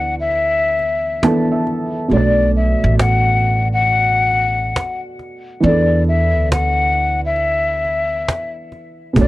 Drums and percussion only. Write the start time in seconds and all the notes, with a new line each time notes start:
0.31 cajon slap
0.79 cajon slap
1.23 cajon slap
1.67 cajon slap
2.10 cajon slap
2.52 cajon slap
2.99 cajon slap
3.39 cajon slap
3.83 cajon slap
4.31 cajon slap
4.76 cajon slap
5.19 cajon slap
5.63 cajon slap
6.04 cajon slap
6.52 cajon slap
6.93 cajon slap
7.36 cajon slap
7.84 cajon slap
8.28 cajon slap
8.72 cajon slap
9.16 cajon bass